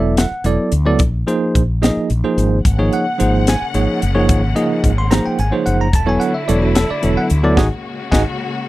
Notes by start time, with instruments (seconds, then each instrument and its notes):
Already playing: fretless electric bass E1, tine electric piano F#3 B3 E4 A4 D5 E5
0.17 tine electric piano F#5, snare, closed hi-hat
0.31 muted fretless electric bass stroke
0.44 fretless electric bass E1, tine electric piano F#3 B3 E4 A4 D5, closed hi-hat
0.72 fretless electric bass D2, closed hi-hat
0.86 tine electric piano F#3 B3 E4 A4 D5
0.99 fretless electric bass A#1, kick, closed hi-hat
1.27 tine electric piano F3 A#3 D#4 G#4 C5, closed hi-hat
1.55 fretless electric bass A#1, kick, closed hi-hat
1.82 tine electric piano F3 A#3 D#4 G#4 D#5, snare, closed hi-hat
1.97 muted fretless electric bass stroke
2.10 fretless electric bass A#1, closed hi-hat
2.24 tine electric piano F3 A#3 D#4 G#4 C5
2.37 fretless electric bass G#1, closed hi-hat
2.64 fretless electric bass G#1, string section C#3 G#3 A#3 F#5, kick, closed hi-hat
2.78 tine electric piano F3 A#3 D#4 G#4 C#5
2.93 tine electric piano F#5, closed hi-hat
3.18 fretless electric bass G#1, tine electric piano F3 A#3 D#4 G#4 C5, closed hi-hat
3.47 tine electric piano G#5, snare, closed hi-hat
3.62 muted fretless electric bass stroke
3.74 fretless electric bass G#1, tine electric piano F3 A#3 D#4 G#4 C#5, closed hi-hat
4.02 fretless electric bass F#1, closed hi-hat
4.15 tine electric piano F3 A#3 D#4 G#4 C#5
4.29 fretless electric bass G#1, kick, closed hi-hat
4.55 tine electric piano F3 A#3 D#4 G#4 D#5, closed hi-hat
4.84 fretless electric bass G#1, kick, closed hi-hat
4.98 tine electric piano C6
5.11 tine electric piano F3 A#3 D#4 G#4 C5 A#5, snare, closed hi-hat
5.26 tine electric piano G5, muted fretless electric bass stroke
5.39 fretless electric bass G#1, tine electric piano G#5, closed hi-hat
5.52 tine electric piano F3 A#3 D#4 G#4 C5 C#5
5.66 fretless electric bass F#1, tine electric piano F#5, closed hi-hat
5.81 tine electric piano A#5
5.93 fretless electric bass E1, string section D3 F#3 A3 E4, tine electric piano A5, kick, closed hi-hat
6.06 tine electric piano F#3 B3 E4 A4 C#5 G#5
6.20 tine electric piano F#5, closed hi-hat
6.34 tine electric piano E5
6.48 fretless electric bass E1, tine electric piano F#3 B3 E4 A4 C#5 D5, closed hi-hat
6.62 tine electric piano F#4
6.75 tine electric piano A4, snare, closed hi-hat
6.91 tine electric piano D5, muted fretless electric bass stroke
7.02 fretless electric bass E1, tine electric piano F#3 B3 E4 A4 C#5, closed hi-hat
7.17 tine electric piano F#5
7.30 fretless electric bass D2, closed hi-hat
7.43 tine electric piano F#3 B3 E4 A4 D5
7.57 fretless electric bass G#1, string section C#3 G#3 A#3 F#4, tine electric piano D#4 F#4 G#4 D#5 F#5 G#5, kick, snare
8.12 fretless electric bass G#1, tine electric piano D#4 F#4 G#4 D#5 F#5 G#5, kick, snare